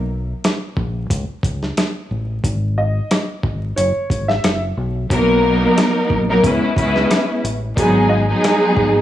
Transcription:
Already playing: fingered electric bass B1
0.44 cross-stick, snare, closed hi-hat
0.77 fingered electric bass A#1, kick
1.10 fingered electric bass C#2, kick, closed hi-hat
1.29 muted fingered electric bass stroke
1.43 fingered electric bass C#2, kick, closed hi-hat
1.63 snare
1.77 cross-stick, snare, closed hi-hat
2.11 fingered electric bass A1
2.44 fingered electric bass G#1, kick, closed hi-hat
2.78 upright piano D#5
3.11 cross-stick, snare, closed hi-hat
3.43 fingered electric bass G#1, kick
3.76 fingered electric bass F#1, upright piano C#5, closed hi-hat
3.96 muted fingered electric bass stroke
4.10 fingered electric bass G#1, kick, closed hi-hat
4.28 upright piano E5, snare
4.44 fingered electric bass F#1, cross-stick, snare, closed hi-hat
4.77 fingered electric bass B1
5.09 fingered electric bass B1, string section F#3 A#3 B3 D#4 A#4, kick, closed hi-hat
5.78 cross-stick, snare, closed hi-hat
6.10 fingered electric bass A#1, kick
6.28 string section F#3 A#3 B3 D#4 A#4
6.42 fingered electric bass C#2, string section G#3 B3 C#4 E4 B4, kick, closed hi-hat
6.62 muted fingered electric bass stroke
6.75 fingered electric bass C#2, string section G#3 B3 C#4 E4 B4, kick, closed hi-hat
6.96 snare
7.11 cross-stick, snare, closed hi-hat
7.44 fingered electric bass A1, closed hi-hat
7.76 fingered electric bass G#1, string section F#3 G#3 B3 D#4 G#4, kick, closed hi-hat
8.09 upright piano D#5
8.28 string section F#3 G#3 B3 D#4 G#4
8.44 cross-stick, snare, closed hi-hat
8.77 fingered electric bass G#1, kick

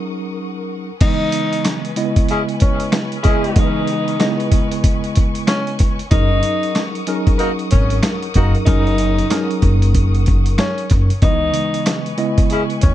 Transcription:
Already playing: tine electric piano F#3 C#4 D#4 G#4 A#4, string section A#4 F#5 C#6 D#6
1.01 tine electric piano C#3 E3 G#3 B3 D#5, tenor saxophone D#4, string section B4 G#5 C#6, kick, closed hi-hat, crash
1.32 closed hi-hat
1.53 closed hi-hat
1.65 cross-stick, snare, closed hi-hat
1.85 closed hi-hat
1.96 tine electric piano C#3 G#3 B3 E4 D#5, closed hi-hat
2.16 kick, closed hi-hat
2.29 horn section G#3 C#4 E4 G#4, closed hi-hat
2.49 closed hi-hat
2.60 tenor saxophone C#4, kick, closed hi-hat
2.80 closed hi-hat
2.92 cross-stick, snare, closed hi-hat
3.12 closed hi-hat
3.23 tine electric piano C#3 G#3 B3 E4 D#5, horn section G#3 C#4 E4 G#4, kick, closed hi-hat
3.44 closed hi-hat
3.56 tine electric piano C#3 E3 G#3 B3 D#5, tenor saxophone D#4, kick, closed hi-hat
3.87 closed hi-hat
4.08 closed hi-hat
4.19 tine electric piano C#3 G#3 B3 E4 D#5, cross-stick, snare, closed hi-hat
4.40 closed hi-hat
4.52 kick, closed hi-hat
4.72 closed hi-hat
4.84 kick, closed hi-hat
5.04 closed hi-hat
5.15 kick, closed hi-hat
5.35 closed hi-hat
5.47 tenor saxophone C#4, cross-stick, snare, closed hi-hat
5.67 closed hi-hat
5.79 kick, snare, closed hi-hat
5.99 closed hi-hat
6.11 upright bass F#1, tine electric piano F#3 C#4 D#4 G#4 A#4, tenor saxophone D#4, string section A#4 F#5 D#6, kick, closed hi-hat
6.43 closed hi-hat
6.63 closed hi-hat
6.75 cross-stick, snare, closed hi-hat
6.95 closed hi-hat
7.07 tine electric piano F#3 C#4 D#4 G#4 A#4, closed hi-hat
7.27 kick, closed hi-hat
7.38 horn section A#3 D#4 F#4 A#4, closed hi-hat
7.59 closed hi-hat
7.71 upright bass G#1, tenor saxophone C#4, kick, closed hi-hat
7.90 closed hi-hat
8.03 cross-stick, snare, closed hi-hat
8.22 closed hi-hat
8.34 upright bass F#1, tine electric piano F#3 C#4 D#4 G#4 A#4, horn section A#3 D#4 F#4 A#4, kick, closed hi-hat
8.55 closed hi-hat
8.65 upright bass F#1, tine electric piano F#3 C#4 D#4 G#4 A#4, tenor saxophone D#4, kick, closed hi-hat
8.87 closed hi-hat
8.98 closed hi-hat
9.18 closed hi-hat
9.30 tine electric piano F#3 C#4 D#4 G#4 A#4, cross-stick, snare, closed hi-hat
9.51 closed hi-hat
9.62 upright bass F#1, kick, closed hi-hat
9.82 closed hi-hat
9.95 kick, closed hi-hat
10.15 closed hi-hat
10.26 kick, closed hi-hat
10.46 closed hi-hat
10.58 tenor saxophone C#4, cross-stick, snare, closed hi-hat
10.78 closed hi-hat
10.90 upright bass F#1, kick, snare, closed hi-hat
11.10 closed hi-hat
11.22 upright bass C#2, tine electric piano C#3 E3 G#3 B3 D#5, tenor saxophone D#4, string section B4 G#5 C#6, kick, closed hi-hat
11.54 closed hi-hat
11.74 closed hi-hat
11.86 cross-stick, snare, closed hi-hat
12.06 closed hi-hat
12.17 tine electric piano C#3 G#3 B3 E4 D#5, closed hi-hat
12.38 kick, closed hi-hat
12.50 horn section G#3 C#4 E4 G#4, closed hi-hat
12.70 closed hi-hat
12.81 upright bass D#2, tenor saxophone C#4, kick, closed hi-hat

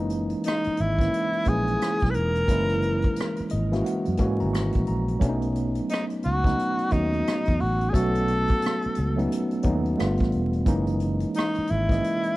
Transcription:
Already playing: fingered electric bass F#1, tine electric piano E3 G#3 A#3 C#4 D#4
0.10 closed hi-hat
0.30 closed hi-hat
0.44 tenor saxophone D#4, closed hi-hat
0.48 cross-stick
0.64 muted fingered electric bass stroke, closed hi-hat
0.77 fingered electric bass G#1, tenor saxophone E4, closed hi-hat
0.98 tine electric piano E3 G#3 A#3 C#4 E4, kick, cross-stick, closed hi-hat
1.14 closed hi-hat
1.33 closed hi-hat
1.45 fingered electric bass A#1, tine electric piano E3 G#3 A#3 C#4 E4, tenor saxophone G#4, kick, closed hi-hat
1.67 closed hi-hat
1.82 cross-stick, closed hi-hat
2.00 kick, closed hi-hat
2.04 fingered electric bass B1, cross-stick
2.11 tenor saxophone B4, closed hi-hat
2.15 fingered electric bass E1, tenor saxophone A#4
2.35 closed hi-hat
2.48 fingered electric bass F#1, tine electric piano E3 G#3 A#3 C#4 E4, kick, closed hi-hat
2.69 closed hi-hat
2.82 closed hi-hat
3.02 kick, closed hi-hat
3.16 closed hi-hat
3.21 cross-stick
3.36 muted fingered electric bass stroke, closed hi-hat
3.50 fingered electric bass G#1, tine electric piano D#5, closed hi-hat
3.72 tine electric piano E3 G#3 A#3 C#4 F#4 E5, cross-stick, closed hi-hat
3.86 tine electric piano F#5, closed hi-hat
4.05 fingered electric bass F#2, closed hi-hat
4.17 fingered electric bass G#2, tine electric piano E3 G#3 A#3 C#4 F#4 G#5, kick, closed hi-hat
4.40 fingered electric bass G#1, tine electric piano A#5, closed hi-hat
4.53 tine electric piano C#6, cross-stick, closed hi-hat
4.72 fingered electric bass A#1, kick, closed hi-hat
4.87 fingered electric bass A#1, tine electric piano A#5, closed hi-hat
5.08 closed hi-hat
5.20 fingered electric bass B1, tine electric piano F#3 A3 B3 C#4 D4, kick, closed hi-hat
5.29 tine electric piano D#4
5.42 closed hi-hat
5.56 closed hi-hat
5.75 closed hi-hat
5.89 tenor saxophone D#4, closed hi-hat
5.94 cross-stick
6.10 closed hi-hat
6.23 fingered electric bass C#2, tenor saxophone F#4, closed hi-hat
6.43 tine electric piano F#3 A3 B3 C#4 D#4, kick, closed hi-hat
6.48 cross-stick
6.59 closed hi-hat
6.79 closed hi-hat
6.90 fingered electric bass D#2, tine electric piano F#3 A3 B3 C#4 F#4, tenor saxophone D#4, kick, closed hi-hat
7.13 closed hi-hat
7.27 cross-stick, closed hi-hat
7.45 kick, closed hi-hat
7.49 fingered electric bass E2
7.60 fingered electric bass A1, tenor saxophone F#4, open hi-hat
7.81 closed hi-hat
7.90 tine electric piano F#3 A3, tenor saxophone G#4 A4, kick
7.94 fingered electric bass B1, tine electric piano B3 C#4 F#4, closed hi-hat
8.15 closed hi-hat
8.28 closed hi-hat
8.48 kick, closed hi-hat
8.62 closed hi-hat
8.66 cross-stick
8.82 muted fingered electric bass stroke, closed hi-hat
8.95 fingered electric bass C#2, closed hi-hat
9.16 tine electric piano F#3 A3 B3 C#4 D#4, closed hi-hat
9.32 closed hi-hat
9.51 closed hi-hat
9.63 fingered electric bass D#2, tine electric piano F#3 A3 B3 C#4 D#4, kick, closed hi-hat
9.86 closed hi-hat
9.97 fingered electric bass G1, tine electric piano G3 A3 B3 D4 F4, cross-stick, closed hi-hat
10.17 kick, closed hi-hat
10.22 fingered electric bass A1, cross-stick
10.32 fingered electric bass E1, closed hi-hat
10.53 closed hi-hat
10.66 fingered electric bass F#1, tine electric piano E3 G#3 A#3 C#4 D#4, kick, closed hi-hat
10.87 closed hi-hat
11.00 closed hi-hat
11.20 closed hi-hat
11.34 tenor saxophone D#4, closed hi-hat
11.39 cross-stick
11.55 muted fingered electric bass stroke, closed hi-hat
11.67 fingered electric bass G#1, tenor saxophone E4, closed hi-hat
11.89 tine electric piano E3 G#3 A#3 C#4 D#5, kick, cross-stick, closed hi-hat
12.04 closed hi-hat
12.23 closed hi-hat

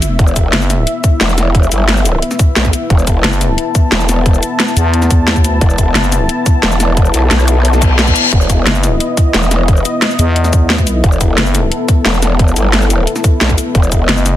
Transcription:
Already playing: fm bass E2, analog synth pad B3 E4 E5
0.02 closed hi-hat, cabasa
0.19 wobble bass E1, kick, closed hi-hat
0.28 cabasa
0.36 kick, closed hi-hat, cabasa
0.53 fm bass F#1, snare, closed hi-hat
0.61 cabasa
0.70 snare, closed hi-hat, cabasa
0.87 closed hi-hat
1.04 kick, closed hi-hat, cabasa
1.21 wobble bass E1, snare, closed hi-hat
1.29 cabasa
1.38 snare, closed hi-hat, cabasa
1.55 kick, closed hi-hat
1.63 cabasa
1.72 wobble bass G1, closed hi-hat, cabasa
1.89 snare, closed hi-hat
1.97 cabasa
2.05 closed hi-hat, cabasa
2.22 closed hi-hat
2.31 snare, cabasa
2.39 kick, closed hi-hat, cabasa
2.56 wobble bass B1, snare, closed hi-hat
2.65 kick, snare, cabasa
2.73 closed hi-hat, cabasa
2.90 wobble bass E1, analog synth pad A5, kick, closed hi-hat
2.99 cabasa
3.07 kick, closed hi-hat, cabasa
3.24 fm bass F#1, snare, closed hi-hat
3.33 cabasa
3.41 snare, closed hi-hat, cabasa
3.58 closed hi-hat
3.75 kick, closed hi-hat, cabasa
3.92 wobble bass E1, snare, closed hi-hat
4.00 cabasa
4.09 snare, closed hi-hat, cabasa
4.26 kick, closed hi-hat
4.34 cabasa
4.43 closed hi-hat, cabasa
4.60 snare, closed hi-hat
4.68 cabasa
4.77 fm bass E2, closed hi-hat, cabasa
4.94 closed hi-hat
5.02 snare, cabasa
5.11 kick, closed hi-hat, cabasa
5.28 snare, closed hi-hat
5.36 fm bass D#2, kick, snare, cabasa
5.44 closed hi-hat, cabasa
5.61 wobble bass E1, kick, closed hi-hat
5.70 cabasa
5.78 kick, closed hi-hat, cabasa
5.95 fm bass F#1, snare, closed hi-hat
6.04 cabasa
6.12 snare, closed hi-hat, cabasa
6.29 closed hi-hat
6.46 kick, closed hi-hat, cabasa
6.63 wobble bass E1, snare, closed hi-hat
6.72 cabasa
6.80 snare, closed hi-hat, cabasa
6.97 kick, closed hi-hat
7.05 cabasa
7.14 wobble bass B1, closed hi-hat, cabasa
7.31 wobble bass B1, snare, closed hi-hat
7.39 cabasa
7.48 closed hi-hat, cabasa
7.65 closed hi-hat, reverse cymbal
7.73 snare, cabasa
7.82 kick, closed hi-hat, cabasa
7.99 snare, closed hi-hat
8.07 kick, snare, cabasa
8.16 closed hi-hat, cabasa
8.33 wobble bass E1, analog synth pad D#5, kick, closed hi-hat
8.41 cabasa
8.50 kick, closed hi-hat, cabasa
8.67 fm bass F#1, snare, closed hi-hat
8.75 cabasa
8.83 snare, closed hi-hat, cabasa
9.00 closed hi-hat
9.17 kick, closed hi-hat, cabasa
9.34 wobble bass E1, snare, closed hi-hat
9.43 cabasa
9.51 snare, closed hi-hat, cabasa
9.68 kick, closed hi-hat
9.77 cabasa
9.85 closed hi-hat, cabasa
10.02 snare, closed hi-hat
10.11 cabasa
10.19 fm bass E2, closed hi-hat, cabasa
10.36 closed hi-hat
10.44 snare, cabasa
10.53 kick, closed hi-hat, cabasa
10.70 snare, closed hi-hat
10.78 kick, snare, cabasa
10.87 closed hi-hat, cabasa
11.04 wobble bass E1, analog synth pad A4, kick, closed hi-hat
11.12 cabasa
11.21 kick, closed hi-hat, cabasa
11.38 fm bass F#1, snare, closed hi-hat
11.46 cabasa
11.55 snare, closed hi-hat, cabasa
11.72 closed hi-hat
11.88 kick, closed hi-hat, cabasa
12.05 wobble bass E1, snare, closed hi-hat
12.14 cabasa
12.22 snare, closed hi-hat, cabasa
12.39 kick, closed hi-hat
12.48 cabasa
12.56 wobble bass G1, closed hi-hat, cabasa
12.73 snare, closed hi-hat
12.82 cabasa
12.90 closed hi-hat, cabasa
13.07 closed hi-hat
13.16 snare, cabasa
13.24 kick, closed hi-hat, cabasa
13.41 wobble bass B1, snare, closed hi-hat
13.50 kick, snare, cabasa
13.58 closed hi-hat, cabasa
13.75 wobble bass E1, analog synth pad D#5, kick, closed hi-hat
13.83 cabasa
13.92 kick, closed hi-hat, cabasa
14.09 fm bass F#1, snare, closed hi-hat
14.17 cabasa
14.26 snare, closed hi-hat, cabasa

